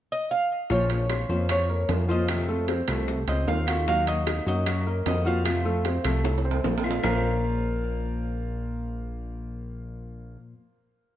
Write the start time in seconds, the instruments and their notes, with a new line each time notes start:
0.12 cuban tres D#5
0.31 cuban tres F5
0.70 analog synth bass A#1, nylon-string guitar F3 A#3 C#4 F4 C5, grand piano F3 F4, cuban tres C#5, high bongo, maracas
0.89 nylon-string guitar C#4 F4, high bongo, high timbale, maracas
1.10 grand piano C6, high bongo, high timbale, claves, maracas
1.29 analog synth bass F2, nylon-string guitar A#3 C#4 F4 C5, high bongo, maracas
1.49 grand piano F3 F4, cuban tres C#5, muted nylon-string guitar stroke, high bongo, high timbale, claves, maracas
1.69 grand piano A#3 A#4, high bongo, maracas
1.89 analog synth bass F2, nylon-string guitar A#3 C#4 F4 C5, high bongo, low bongo, high timbale, low timbale, maracas
2.08 grand piano F3 F4, nylon-string guitar A#3 C#4 F4 C5, cuban tres D#5, maracas
2.28 nylon-string guitar C3 D#3 A3 C4 F4, high bongo, high timbale, claves, maracas
2.48 grand piano A3 A4, nylon-string guitar A3 C4 F4, high bongo, maracas
2.68 grand piano C4 C5, high bongo, high timbale, maracas
2.88 analog synth bass C2, nylon-string guitar D#3 A3 C4 F4, grand piano A3 A4, high timbale, claves, maracas
3.08 muted nylon-string guitar stroke, high bongo, maracas
3.28 analog synth bass C#2, grand piano C4 C5, cuban tres D#5, high bongo, high timbale, maracas
3.47 analog synth bass D#2, nylon-string guitar D#3 A3 C4 F4, cuban tres F5, high bongo, low bongo, low timbale, maracas
3.67 nylon-string guitar D#3 A3 C4 F4, grand piano F#4 F#5, high timbale, claves, maracas
3.87 nylon-string guitar D#3 A#3 D#4 F#4, grand piano F#3 F#4, cuban tres F5, high bongo, maracas
4.07 nylon-string guitar A#3 D#4 F#4, cuban tres D#5, high bongo, high timbale, maracas
4.27 grand piano D#4 D#5, high bongo, high timbale, claves, maracas
4.46 analog synth bass F#2, nylon-string guitar A#3 D#4 F#4, cuban tres D#5, high bongo, maracas
4.66 grand piano F#3 F#4, muted nylon-string guitar stroke, high bongo, high timbale, claves, maracas
4.86 grand piano A#3 A#4, high bongo, maracas
5.05 analog synth bass F2, nylon-string guitar D#3 A#3 D#4 F#4, cuban tres D#5, high bongo, low bongo, high timbale, low timbale, maracas
5.25 grand piano F3 F4, nylon-string guitar A#3 D#4 F#4, cuban tres F5, maracas
5.44 nylon-string guitar C3 F3 A3 C4 F4, high bongo, high timbale, claves, maracas
5.64 grand piano A3 A4, nylon-string guitar A3 C4 F4, high bongo, maracas
5.85 grand piano C4 C5, high bongo, high timbale, maracas
6.04 analog synth bass C2, nylon-string guitar F3 A3 C4 F4, grand piano A3 A4, high bongo, high timbale, claves, maracas
6.24 muted nylon-string guitar stroke, high bongo, high timbale, maracas
6.38 high timbale
6.44 grand piano C4 C5, high bongo, maracas
6.51 low timbale
6.63 analog synth bass A#1, nylon-string guitar F3 A3 C4 F4, high bongo, low bongo, low timbale, maracas
6.78 low timbale
6.83 nylon-string guitar F3 A3 C4 F4, grand piano F4 F5, claves, maracas
6.91 low timbale
7.03 analog synth bass A#1, nylon-string guitar A#2 F3 A#3 C#4 F4 C5, grand piano A#3 F4 A#4 C5 F5, cuban tres A#5, low bongo, low timbale, claves, maracas